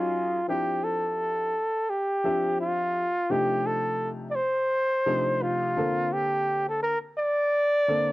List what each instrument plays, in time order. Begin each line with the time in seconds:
Already playing: upright piano F#3 C#4 D#4 F4 G#4, flugelhorn F4
0.48 upright piano F3 C4 D4 E4 G4, flugelhorn G4
0.84 flugelhorn A4
1.90 flugelhorn G4
2.24 upright piano F3 C4 D4 G4 E5
2.60 flugelhorn F4
3.30 upright piano C3 F3 A3 D4 D#4 G4, flugelhorn G4
3.66 flugelhorn A4
4.31 flugelhorn D5
4.35 flugelhorn C5
5.06 upright piano C3 F3 A3 D4 D#4 G4
5.42 flugelhorn F4
5.77 upright piano D3 A#3 C4 A4
6.13 flugelhorn G4
6.69 flugelhorn A4
6.83 flugelhorn A#4
7.18 flugelhorn D5
7.88 upright piano D3 A#3 C4 A4